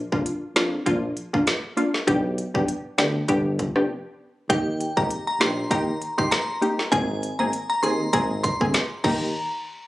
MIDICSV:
0, 0, Header, 1, 5, 480
1, 0, Start_track
1, 0, Key_signature, -3, "major"
1, 0, Tempo, 606061
1, 1643, Time_signature, 4, 2, 24, 8
1, 7819, End_track
2, 0, Start_track
2, 0, Title_t, "Synth bell"
2, 0, Program_c, 0, 98
2, 3563, Note_on_c, 0, 79, 90
2, 3651, Note_off_c, 0, 79, 0
2, 3936, Note_on_c, 0, 82, 79
2, 4006, Note_off_c, 0, 82, 0
2, 4177, Note_on_c, 0, 82, 78
2, 4246, Note_off_c, 0, 82, 0
2, 4284, Note_on_c, 0, 84, 78
2, 4372, Note_off_c, 0, 84, 0
2, 4524, Note_on_c, 0, 82, 83
2, 4612, Note_off_c, 0, 82, 0
2, 4896, Note_on_c, 0, 84, 77
2, 4966, Note_off_c, 0, 84, 0
2, 5000, Note_on_c, 0, 82, 80
2, 5354, Note_off_c, 0, 82, 0
2, 5478, Note_on_c, 0, 80, 95
2, 5568, Note_off_c, 0, 80, 0
2, 5853, Note_on_c, 0, 82, 81
2, 5924, Note_off_c, 0, 82, 0
2, 6095, Note_on_c, 0, 82, 90
2, 6165, Note_off_c, 0, 82, 0
2, 6199, Note_on_c, 0, 84, 83
2, 6288, Note_off_c, 0, 84, 0
2, 6439, Note_on_c, 0, 82, 95
2, 6529, Note_off_c, 0, 82, 0
2, 6680, Note_on_c, 0, 84, 81
2, 6769, Note_off_c, 0, 84, 0
2, 7159, Note_on_c, 0, 82, 86
2, 7384, Note_off_c, 0, 82, 0
2, 7819, End_track
3, 0, Start_track
3, 0, Title_t, "Synth stab"
3, 0, Program_c, 1, 62
3, 96, Note_on_c, 1, 58, 76
3, 97, Note_on_c, 1, 62, 65
3, 101, Note_on_c, 1, 65, 82
3, 417, Note_off_c, 1, 58, 0
3, 418, Note_off_c, 1, 62, 0
3, 419, Note_off_c, 1, 65, 0
3, 442, Note_on_c, 1, 58, 76
3, 444, Note_on_c, 1, 62, 70
3, 447, Note_on_c, 1, 65, 87
3, 666, Note_off_c, 1, 58, 0
3, 667, Note_off_c, 1, 62, 0
3, 668, Note_off_c, 1, 65, 0
3, 680, Note_on_c, 1, 58, 97
3, 682, Note_on_c, 1, 62, 85
3, 684, Note_on_c, 1, 65, 106
3, 850, Note_off_c, 1, 58, 0
3, 851, Note_off_c, 1, 62, 0
3, 852, Note_off_c, 1, 65, 0
3, 1056, Note_on_c, 1, 58, 73
3, 1058, Note_on_c, 1, 62, 70
3, 1060, Note_on_c, 1, 65, 84
3, 1206, Note_off_c, 1, 58, 0
3, 1207, Note_off_c, 1, 62, 0
3, 1208, Note_off_c, 1, 65, 0
3, 1400, Note_on_c, 1, 58, 73
3, 1401, Note_on_c, 1, 62, 69
3, 1404, Note_on_c, 1, 65, 84
3, 1570, Note_off_c, 1, 58, 0
3, 1570, Note_off_c, 1, 62, 0
3, 1572, Note_off_c, 1, 65, 0
3, 1640, Note_on_c, 1, 59, 95
3, 1642, Note_on_c, 1, 62, 91
3, 1645, Note_on_c, 1, 67, 109
3, 1984, Note_off_c, 1, 59, 0
3, 1985, Note_off_c, 1, 62, 0
3, 1986, Note_off_c, 1, 67, 0
3, 2014, Note_on_c, 1, 59, 75
3, 2017, Note_on_c, 1, 62, 72
3, 2019, Note_on_c, 1, 67, 79
3, 2165, Note_off_c, 1, 59, 0
3, 2166, Note_off_c, 1, 62, 0
3, 2167, Note_off_c, 1, 67, 0
3, 2359, Note_on_c, 1, 59, 73
3, 2361, Note_on_c, 1, 62, 70
3, 2364, Note_on_c, 1, 67, 80
3, 2529, Note_off_c, 1, 59, 0
3, 2531, Note_off_c, 1, 62, 0
3, 2532, Note_off_c, 1, 67, 0
3, 2600, Note_on_c, 1, 59, 88
3, 2603, Note_on_c, 1, 62, 81
3, 2605, Note_on_c, 1, 67, 102
3, 2944, Note_off_c, 1, 59, 0
3, 2945, Note_off_c, 1, 62, 0
3, 2946, Note_off_c, 1, 67, 0
3, 2975, Note_on_c, 1, 59, 78
3, 2978, Note_on_c, 1, 62, 70
3, 2980, Note_on_c, 1, 67, 86
3, 3082, Note_off_c, 1, 59, 0
3, 3083, Note_off_c, 1, 62, 0
3, 3084, Note_off_c, 1, 67, 0
3, 3559, Note_on_c, 1, 58, 94
3, 3561, Note_on_c, 1, 63, 88
3, 3564, Note_on_c, 1, 67, 107
3, 3903, Note_off_c, 1, 58, 0
3, 3904, Note_off_c, 1, 63, 0
3, 3906, Note_off_c, 1, 67, 0
3, 3934, Note_on_c, 1, 58, 78
3, 3936, Note_on_c, 1, 63, 69
3, 3939, Note_on_c, 1, 67, 81
3, 4256, Note_off_c, 1, 58, 0
3, 4257, Note_off_c, 1, 63, 0
3, 4258, Note_off_c, 1, 67, 0
3, 4278, Note_on_c, 1, 58, 75
3, 4281, Note_on_c, 1, 63, 69
3, 4282, Note_on_c, 1, 67, 88
3, 4504, Note_off_c, 1, 58, 0
3, 4505, Note_off_c, 1, 63, 0
3, 4506, Note_off_c, 1, 67, 0
3, 4517, Note_on_c, 1, 58, 94
3, 4519, Note_on_c, 1, 63, 84
3, 4522, Note_on_c, 1, 67, 107
3, 4689, Note_off_c, 1, 58, 0
3, 4690, Note_off_c, 1, 63, 0
3, 4691, Note_off_c, 1, 67, 0
3, 4893, Note_on_c, 1, 58, 77
3, 4893, Note_on_c, 1, 63, 71
3, 4896, Note_on_c, 1, 67, 86
3, 5044, Note_off_c, 1, 58, 0
3, 5044, Note_off_c, 1, 63, 0
3, 5046, Note_off_c, 1, 67, 0
3, 5238, Note_on_c, 1, 58, 77
3, 5241, Note_on_c, 1, 63, 69
3, 5244, Note_on_c, 1, 67, 84
3, 5409, Note_off_c, 1, 58, 0
3, 5410, Note_off_c, 1, 63, 0
3, 5412, Note_off_c, 1, 67, 0
3, 5477, Note_on_c, 1, 58, 98
3, 5481, Note_on_c, 1, 60, 89
3, 5483, Note_on_c, 1, 68, 109
3, 5822, Note_off_c, 1, 58, 0
3, 5824, Note_off_c, 1, 60, 0
3, 5825, Note_off_c, 1, 68, 0
3, 5855, Note_on_c, 1, 58, 73
3, 5857, Note_on_c, 1, 60, 73
3, 5860, Note_on_c, 1, 68, 82
3, 6005, Note_off_c, 1, 58, 0
3, 6006, Note_off_c, 1, 60, 0
3, 6008, Note_off_c, 1, 68, 0
3, 6200, Note_on_c, 1, 58, 74
3, 6202, Note_on_c, 1, 60, 69
3, 6204, Note_on_c, 1, 68, 86
3, 6370, Note_off_c, 1, 58, 0
3, 6371, Note_off_c, 1, 60, 0
3, 6372, Note_off_c, 1, 68, 0
3, 6441, Note_on_c, 1, 58, 99
3, 6443, Note_on_c, 1, 60, 88
3, 6446, Note_on_c, 1, 68, 107
3, 6784, Note_off_c, 1, 58, 0
3, 6785, Note_off_c, 1, 60, 0
3, 6787, Note_off_c, 1, 68, 0
3, 6815, Note_on_c, 1, 58, 76
3, 6817, Note_on_c, 1, 60, 72
3, 6821, Note_on_c, 1, 68, 88
3, 6965, Note_off_c, 1, 58, 0
3, 6966, Note_off_c, 1, 60, 0
3, 6968, Note_off_c, 1, 68, 0
3, 7159, Note_on_c, 1, 58, 89
3, 7162, Note_on_c, 1, 63, 78
3, 7168, Note_on_c, 1, 67, 92
3, 7345, Note_off_c, 1, 58, 0
3, 7347, Note_off_c, 1, 63, 0
3, 7350, Note_off_c, 1, 67, 0
3, 7819, End_track
4, 0, Start_track
4, 0, Title_t, "Tuba"
4, 0, Program_c, 2, 58
4, 97, Note_on_c, 2, 29, 83
4, 180, Note_off_c, 2, 29, 0
4, 443, Note_on_c, 2, 41, 79
4, 631, Note_off_c, 2, 41, 0
4, 684, Note_on_c, 2, 34, 91
4, 872, Note_off_c, 2, 34, 0
4, 1643, Note_on_c, 2, 35, 106
4, 1936, Note_off_c, 2, 35, 0
4, 2018, Note_on_c, 2, 35, 83
4, 2101, Note_off_c, 2, 35, 0
4, 2363, Note_on_c, 2, 38, 92
4, 2551, Note_off_c, 2, 38, 0
4, 2602, Note_on_c, 2, 31, 97
4, 2896, Note_off_c, 2, 31, 0
4, 2975, Note_on_c, 2, 29, 93
4, 3059, Note_off_c, 2, 29, 0
4, 3563, Note_on_c, 2, 39, 109
4, 3856, Note_off_c, 2, 39, 0
4, 3937, Note_on_c, 2, 32, 96
4, 4020, Note_off_c, 2, 32, 0
4, 4281, Note_on_c, 2, 34, 92
4, 4470, Note_off_c, 2, 34, 0
4, 4523, Note_on_c, 2, 39, 110
4, 4711, Note_off_c, 2, 39, 0
4, 5483, Note_on_c, 2, 32, 114
4, 5776, Note_off_c, 2, 32, 0
4, 5857, Note_on_c, 2, 32, 91
4, 5940, Note_off_c, 2, 32, 0
4, 6203, Note_on_c, 2, 39, 96
4, 6391, Note_off_c, 2, 39, 0
4, 6442, Note_on_c, 2, 32, 100
4, 6736, Note_off_c, 2, 32, 0
4, 6818, Note_on_c, 2, 31, 86
4, 6901, Note_off_c, 2, 31, 0
4, 7163, Note_on_c, 2, 39, 105
4, 7386, Note_off_c, 2, 39, 0
4, 7819, End_track
5, 0, Start_track
5, 0, Title_t, "Drums"
5, 98, Note_on_c, 9, 36, 100
5, 177, Note_off_c, 9, 36, 0
5, 205, Note_on_c, 9, 42, 70
5, 284, Note_off_c, 9, 42, 0
5, 443, Note_on_c, 9, 42, 54
5, 444, Note_on_c, 9, 38, 118
5, 523, Note_off_c, 9, 38, 0
5, 523, Note_off_c, 9, 42, 0
5, 683, Note_on_c, 9, 36, 95
5, 683, Note_on_c, 9, 42, 75
5, 763, Note_off_c, 9, 36, 0
5, 763, Note_off_c, 9, 42, 0
5, 924, Note_on_c, 9, 42, 56
5, 1003, Note_off_c, 9, 42, 0
5, 1060, Note_on_c, 9, 36, 88
5, 1139, Note_off_c, 9, 36, 0
5, 1164, Note_on_c, 9, 42, 74
5, 1167, Note_on_c, 9, 38, 114
5, 1243, Note_off_c, 9, 42, 0
5, 1247, Note_off_c, 9, 38, 0
5, 1404, Note_on_c, 9, 42, 51
5, 1484, Note_off_c, 9, 42, 0
5, 1539, Note_on_c, 9, 38, 68
5, 1618, Note_off_c, 9, 38, 0
5, 1644, Note_on_c, 9, 36, 120
5, 1645, Note_on_c, 9, 42, 76
5, 1723, Note_off_c, 9, 36, 0
5, 1724, Note_off_c, 9, 42, 0
5, 1886, Note_on_c, 9, 42, 63
5, 1965, Note_off_c, 9, 42, 0
5, 2018, Note_on_c, 9, 36, 98
5, 2098, Note_off_c, 9, 36, 0
5, 2126, Note_on_c, 9, 42, 72
5, 2205, Note_off_c, 9, 42, 0
5, 2363, Note_on_c, 9, 38, 117
5, 2363, Note_on_c, 9, 42, 52
5, 2442, Note_off_c, 9, 42, 0
5, 2443, Note_off_c, 9, 38, 0
5, 2601, Note_on_c, 9, 42, 73
5, 2603, Note_on_c, 9, 36, 97
5, 2680, Note_off_c, 9, 42, 0
5, 2682, Note_off_c, 9, 36, 0
5, 2844, Note_on_c, 9, 42, 54
5, 2845, Note_on_c, 9, 36, 83
5, 2923, Note_off_c, 9, 42, 0
5, 2925, Note_off_c, 9, 36, 0
5, 2975, Note_on_c, 9, 37, 87
5, 3055, Note_off_c, 9, 37, 0
5, 3562, Note_on_c, 9, 36, 117
5, 3563, Note_on_c, 9, 42, 80
5, 3641, Note_off_c, 9, 36, 0
5, 3643, Note_off_c, 9, 42, 0
5, 3806, Note_on_c, 9, 42, 60
5, 3885, Note_off_c, 9, 42, 0
5, 3937, Note_on_c, 9, 36, 104
5, 4016, Note_off_c, 9, 36, 0
5, 4043, Note_on_c, 9, 42, 72
5, 4122, Note_off_c, 9, 42, 0
5, 4283, Note_on_c, 9, 38, 121
5, 4283, Note_on_c, 9, 42, 54
5, 4362, Note_off_c, 9, 38, 0
5, 4362, Note_off_c, 9, 42, 0
5, 4521, Note_on_c, 9, 42, 79
5, 4522, Note_on_c, 9, 36, 92
5, 4600, Note_off_c, 9, 42, 0
5, 4601, Note_off_c, 9, 36, 0
5, 4765, Note_on_c, 9, 42, 55
5, 4844, Note_off_c, 9, 42, 0
5, 4899, Note_on_c, 9, 36, 85
5, 4978, Note_off_c, 9, 36, 0
5, 5004, Note_on_c, 9, 42, 74
5, 5007, Note_on_c, 9, 38, 119
5, 5083, Note_off_c, 9, 42, 0
5, 5086, Note_off_c, 9, 38, 0
5, 5245, Note_on_c, 9, 42, 50
5, 5325, Note_off_c, 9, 42, 0
5, 5379, Note_on_c, 9, 38, 72
5, 5459, Note_off_c, 9, 38, 0
5, 5483, Note_on_c, 9, 36, 123
5, 5485, Note_on_c, 9, 42, 79
5, 5562, Note_off_c, 9, 36, 0
5, 5564, Note_off_c, 9, 42, 0
5, 5727, Note_on_c, 9, 42, 61
5, 5806, Note_off_c, 9, 42, 0
5, 5965, Note_on_c, 9, 42, 68
5, 6044, Note_off_c, 9, 42, 0
5, 6204, Note_on_c, 9, 42, 54
5, 6284, Note_off_c, 9, 42, 0
5, 6442, Note_on_c, 9, 36, 95
5, 6442, Note_on_c, 9, 42, 77
5, 6521, Note_off_c, 9, 36, 0
5, 6521, Note_off_c, 9, 42, 0
5, 6684, Note_on_c, 9, 42, 57
5, 6685, Note_on_c, 9, 36, 84
5, 6763, Note_off_c, 9, 42, 0
5, 6764, Note_off_c, 9, 36, 0
5, 6819, Note_on_c, 9, 36, 91
5, 6898, Note_off_c, 9, 36, 0
5, 6922, Note_on_c, 9, 42, 75
5, 6925, Note_on_c, 9, 38, 119
5, 7001, Note_off_c, 9, 42, 0
5, 7004, Note_off_c, 9, 38, 0
5, 7162, Note_on_c, 9, 36, 108
5, 7163, Note_on_c, 9, 49, 92
5, 7242, Note_off_c, 9, 36, 0
5, 7242, Note_off_c, 9, 49, 0
5, 7819, End_track
0, 0, End_of_file